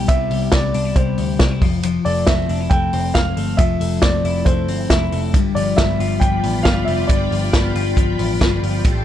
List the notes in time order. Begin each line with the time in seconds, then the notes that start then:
Already playing: G3 B3 E4
0.08 C2 C3 E5, kick, hi-hat pedal, ride
0.31 C2 G3, open hi-hat
0.52 C2 B3 D5, kick, snare, hi-hat pedal, ride
0.74 C2 D4, open hi-hat
0.85 E4
0.95 C2 G3 C5, kick, hi-hat pedal, ride
1.18 D2, open hi-hat
1.39 C2 D4, kick, snare, hi-hat pedal, ride
1.52 E4
1.62 F1 F3, kick, open hi-hat
1.83 F3, hi-hat pedal, ride
2.05 F1 A3 D5, open hi-hat
2.27 F1 C4 E5, kick, snare, hi-hat pedal, ride
2.49 F1 D4, open hi-hat
2.61 E4
2.70 F1 A3 G5, kick, hi-hat pedal, ride
2.93 F1 C4, open hi-hat
3.14 F1 F5, kick, snare, hi-hat pedal, ride
3.37 G1 A3, open hi-hat
3.57 F1 F3 E5, kick, hi-hat pedal, ride
3.81 F1 A3, open hi-hat
4.02 F1 C4 D5, kick, snare, hi-hat pedal, ride
4.24 F1 E4, open hi-hat
4.45 F1 A3 C5, kick, hi-hat pedal, ride
4.68 G1 C4, open hi-hat
4.90 F1 E4 E5, kick, snare, hi-hat pedal, ride
5.12 F1 A3, open hi-hat
5.34 G1 G2 F4 D5 G5 B5, kick, hi-hat pedal, ride
5.55 G1 F3 D5, open hi-hat
5.76 G1 B3 E5, kick, snare, hi-hat pedal, ride
6.00 G1 F4, open hi-hat
6.20 G1 F3 G5, kick, hi-hat pedal, ride
6.43 A1 B3, open hi-hat
6.63 G1 F4 F5, kick, snare, hi-hat pedal, ride
6.85 F1 F3 E5, open hi-hat
7.07 G1 G2 D5, kick, hi-hat pedal, ride
7.31 G1 F3, open hi-hat
7.53 G1 B3, kick, snare, hi-hat pedal, ride
7.75 G1 F4, open hi-hat
7.97 G1 F3, kick, hi-hat pedal, ride
8.19 A1 B3, open hi-hat
8.41 G1 F4, kick, snare, hi-hat pedal, ride
8.63 G1 F3, open hi-hat
8.85 A1 A2 G4 G5 A5 C6, kick, hi-hat pedal, ride